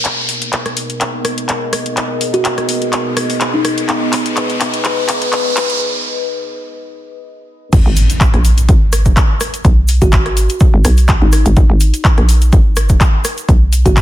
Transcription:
0.05 B3 G#4 A#4 D#5, clap, closed hi-hat, riser
0.29 open hi-hat
0.42 closed hi-hat
0.53 clap, closed hi-hat
0.66 cross-stick, closed hi-hat
0.77 open hi-hat
0.90 closed hi-hat
1.01 clap, closed hi-hat
1.25 cross-stick, open hi-hat
1.38 closed hi-hat
1.49 clap, closed hi-hat
1.73 cross-stick, open hi-hat
1.86 closed hi-hat
1.97 clap, closed hi-hat
2.21 open hi-hat
2.34 F#4, closed hi-hat
2.45 clap, closed hi-hat
2.58 cross-stick, closed hi-hat
2.69 open hi-hat
2.82 closed hi-hat
2.93 clap, closed hi-hat
3.17 cross-stick, open hi-hat
3.30 open hi-hat
3.41 clap, closed hi-hat
3.54 D#4
3.65 cross-stick, open hi-hat
3.78 closed hi-hat
3.89 B4, clap, closed hi-hat
4.13 clap, open hi-hat
4.26 closed hi-hat
4.37 clap, closed hi-hat
4.50 closed hi-hat
4.61 clap, open hi-hat
4.74 closed hi-hat
4.85 clap, closed hi-hat
5.09 clap, open hi-hat
5.22 closed hi-hat
5.33 clap, closed hi-hat
5.57 clap, open hi-hat
5.70 closed hi-hat
7.73 G#1, kick, closed hi-hat, crash, impact, shaker
7.86 G#1
7.97 open hi-hat, shaker
8.10 closed hi-hat, shaker
8.21 kick, clap, closed hi-hat, shaker
8.34 A#1, cross-stick, closed hi-hat
8.45 open hi-hat, shaker
8.58 closed hi-hat, shaker
8.69 G#1, kick, closed hi-hat, shaker
8.93 cross-stick, open hi-hat, shaker
9.05 kick, closed hi-hat, shaker
9.17 kick, clap, closed hi-hat, shaker
9.40 cross-stick, open hi-hat, shaker
9.54 closed hi-hat, shaker
9.64 B1, kick, closed hi-hat, shaker
9.88 open hi-hat, shaker
10.01 G#1 F#4, kick, closed hi-hat, shaker
10.12 kick, clap, closed hi-hat, shaker
10.26 cross-stick, closed hi-hat
10.37 open hi-hat, shaker
10.49 closed hi-hat, shaker
10.60 kick, closed hi-hat, shaker
10.74 G#1
10.84 B1, cross-stick, open hi-hat, shaker
10.97 open hi-hat, shaker
11.08 kick, clap, closed hi-hat, shaker
11.22 G#1 D#4
11.32 cross-stick, open hi-hat, shaker
11.46 G#1, closed hi-hat, shaker
11.56 G#1, kick, closed hi-hat, shaker
11.70 G#1
11.80 open hi-hat, shaker
11.94 closed hi-hat, shaker
12.05 kick, clap, closed hi-hat, shaker
12.18 A#1, cross-stick, closed hi-hat
12.29 open hi-hat, shaker
12.41 closed hi-hat, shaker
12.52 G#1, kick, closed hi-hat, shaker
12.76 cross-stick, open hi-hat, shaker
12.89 kick, closed hi-hat, shaker
13.01 kick, clap, closed hi-hat, shaker
13.24 cross-stick, open hi-hat, shaker
13.37 closed hi-hat, shaker
13.49 B1, kick, closed hi-hat, shaker
13.73 open hi-hat, shaker
13.85 G#1 F#4, kick, closed hi-hat, shaker
13.97 kick, clap, closed hi-hat, shaker

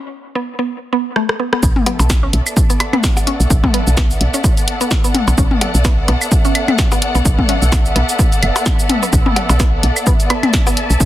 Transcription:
0.35 B3
0.59 B3
0.93 B3
1.16 A3, cross-stick
1.29 cross-stick
1.40 B3
1.53 B3, cross-stick
1.63 B1 B3 E5, kick, cabasa
1.76 mid tom
1.86 B3, closed hi-hat, percussion blips
1.94 A4
1.99 B1, cabasa, percussion blips
2.10 kick, snare, cabasa
2.23 C#4
2.33 B1 D5, closed hi-hat
2.46 cabasa, claves
2.57 kick, cabasa
2.70 B3, closed hi-hat, cabasa
2.80 closed hi-hat, claves, percussion blips
2.85 F#5
2.93 B3, closed hi-hat, mid tom, claves
3.04 kick, snare, cabasa
3.17 percussion blips, cabasa
3.27 C#4, closed hi-hat
3.40 B1, cabasa
3.50 B1, kick, cabasa
3.64 kick, mid tom, percussion blips
3.74 B3, closed hi-hat
3.87 B1, cabasa
3.97 B3, kick, snare, cabasa
4.11 cabasa
4.21 B1, closed hi-hat
4.34 C#4, cabasa
4.44 kick, cabasa, percussion blips
4.57 closed hi-hat, cabasa
4.68 closed hi-hat
4.81 B3, closed hi-hat, cabasa
4.91 kick, snare, cabasa
5.04 B3, cabasa
5.14 closed hi-hat, mid tom
5.28 B1, cabasa, percussion blips
5.38 B1 C#4, kick, cabasa
5.51 mid tom
5.61 closed hi-hat, percussion blips
5.75 B1, cabasa
5.85 B3, kick, snare, cabasa
6.08 B1 B3, closed hi-hat, percussion blips
6.21 cabasa, claves
6.32 kick, cabasa
6.45 C#4, closed hi-hat, cabasa
6.55 closed hi-hat, claves
6.68 closed hi-hat, mid tom, claves
6.78 kick, snare, cabasa
6.92 B3, percussion blips, cabasa
7.02 closed hi-hat
7.15 B1 B3, cabasa
7.25 B1, kick, cabasa
7.39 kick, mid tom
7.49 C#4, closed hi-hat
7.62 B1, cabasa
7.72 kick, snare, cabasa, percussion blips
7.86 cabasa
7.96 B1 B3, closed hi-hat
8.09 cabasa
8.19 B3, kick, cabasa
8.32 closed hi-hat, cabasa
8.43 F#1, closed hi-hat, claves
8.56 closed hi-hat, cabasa, percussion blips
8.66 kick, snare, cabasa
8.79 cabasa
8.89 closed hi-hat, mid tom
9.03 B3, cabasa
9.13 B1, kick, cabasa
9.26 B3, mid tom
9.36 closed hi-hat, percussion blips
9.49 B1, cabasa, percussion blips
9.60 B3, kick, snare, cabasa
9.83 B1, closed hi-hat
9.96 cabasa, claves
10.07 B3, kick, cabasa
10.20 closed hi-hat, cabasa
10.30 B3, closed hi-hat, claves, percussion blips
10.36 A5
10.43 closed hi-hat, mid tom, claves
10.54 kick, snare, cabasa
10.67 B3, percussion blips, cabasa
10.77 closed hi-hat
10.90 B1, cabasa
11.00 B1, kick, cabasa

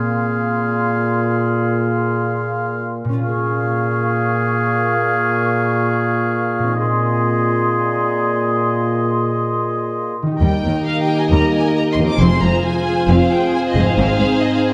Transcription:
Already playing: A#2 C4 F4 G#4 F5 C6
3.05 A#2
3.09 C#4
3.14 F4
3.18 G#4
3.22 A#2 G#4 F5 C#6
6.59 A#2
6.63 C4
6.68 D#4
6.73 G#4 D#5
6.78 A#2 G#4 C6
10.22 D#3
10.27 D#4
10.31 G4
10.36 A#4
10.41 D#2 G3 A#3 D#4 G4 A#4 D#5 G5
10.64 D#2 D#3
10.87 F5
11.03 G5
11.18 G#5
11.31 D#2 G3 A#5
11.54 G#5
11.76 A#5
11.92 C6
11.97 D#2 D#3
12.02 F3
12.07 C4 D6
12.11 F4
12.15 G#4
12.20 F1 F2 C4 F4 G#4 C5 C6
12.42 F1 F2 G#3 A#5
12.66 G#5
13.08 F1 F2 C4 F5
13.33 G5
13.55 G#5
13.69 D#5
13.75 F1 F2 G#3
13.80 G#2
13.85 C4 F5
13.89 D#4
13.93 C5
13.97 G#1 G#2 C4 D#4 F5
14.19 G#1 G#2 G#3
14.42 D#5
14.56 F5

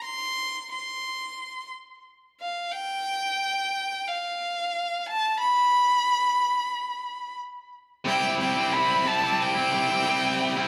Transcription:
0.04 C6
0.72 C6
2.40 F5
2.72 G5
4.07 F5
5.06 A5
5.40 B5
8.05 C3 G3 C4 E4 G5
8.38 C3 G3 C4 E4 G5
8.56 G3 C4 E4
8.71 C3 G3 C4 E4 B5
9.04 C3 G3 C4 E4 A5
9.21 G3 C4 E4
9.42 G5
9.55 G3 C4 E4
9.72 C3 G3 C4 E4
9.89 G3 C4 E4
10.05 C3 G3 C4 E4
10.56 G3 C4 E4

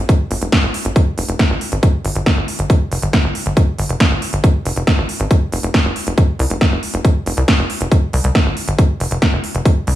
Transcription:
0.09 kick, closed hi-hat
0.31 G1, open hi-hat
0.41 F1, closed hi-hat
0.52 kick, snare, closed hi-hat
0.63 G1
0.74 open hi-hat
0.85 G1, closed hi-hat
0.96 kick, closed hi-hat
1.18 F1, open hi-hat
1.28 F1, closed hi-hat
1.39 kick, snare, closed hi-hat
1.50 G#1
1.61 open hi-hat
1.72 G#1, closed hi-hat
1.83 kick, closed hi-hat
2.05 G1, open hi-hat
2.15 G1, closed hi-hat
2.26 kick, snare, closed hi-hat
2.37 G1
2.48 open hi-hat
2.59 G1, closed hi-hat
2.70 kick, closed hi-hat
2.92 F1, open hi-hat
3.02 G1, closed hi-hat
3.13 kick, snare, closed hi-hat
3.24 G1
3.35 open hi-hat
3.46 G1, closed hi-hat
3.57 kick, closed hi-hat
3.79 G1, open hi-hat
3.89 F1, closed hi-hat
4.00 kick, snare, closed hi-hat
4.11 G1
4.22 open hi-hat
4.33 G1, closed hi-hat
4.44 kick, closed hi-hat
4.65 F1, open hi-hat
4.76 F1, closed hi-hat
4.87 kick, snare, closed hi-hat
4.98 G#1
5.09 open hi-hat
5.20 G#1, closed hi-hat
5.31 kick, closed hi-hat
5.52 F1, open hi-hat
5.63 F1, closed hi-hat
5.74 kick, snare, closed hi-hat
5.85 F1
5.96 open hi-hat
6.07 F1, closed hi-hat
6.18 kick, closed hi-hat
6.39 C2, open hi-hat
6.50 F1, closed hi-hat
6.61 kick, snare, closed hi-hat
6.72 F1
6.83 open hi-hat
6.94 F1, closed hi-hat
7.05 kick, closed hi-hat
7.26 F1, open hi-hat
7.37 C2, closed hi-hat
7.48 kick, snare, closed hi-hat
7.59 F1
7.70 open hi-hat
7.81 F1, closed hi-hat
7.92 kick, closed hi-hat
8.13 C2, open hi-hat
8.24 C2, closed hi-hat
8.35 kick, snare, closed hi-hat
8.46 G1
8.57 open hi-hat
8.68 G1, closed hi-hat
8.78 kick, closed hi-hat
9.00 F1, open hi-hat
9.11 F1, closed hi-hat
9.22 kick, snare, closed hi-hat
9.33 F1
9.44 open hi-hat
9.55 F1, closed hi-hat
9.65 kick, closed hi-hat
9.87 C2, open hi-hat

